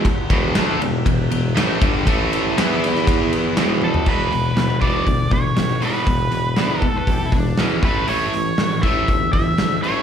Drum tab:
CC |----------------|----------------|x---------------|----------------|
RD |x-x-x-x-x-x-x-x-|x-x-x-x-x-x-x---|----------------|----------------|
HH |----------------|----------------|--o-o-o-o-o-o-o-|o-o-o-o-o-o-o-o-|
SD |----o-------o---|----o-oo----o---|----o-------o---|----o-------o---|
T1 |----------------|--------------o-|----------------|----------------|
FT |----------------|---------------o|----------------|----------------|
BD |o-o-----o-----o-|o-------o-------|o-----o-o-o-----|o-----o-o-o---o-|

CC |----------------|
RD |----------------|
HH |o-o-o-o-o-o-o-o-|
SD |----o-------o---|
T1 |----------------|
FT |----------------|
BD |------o-o-o-----|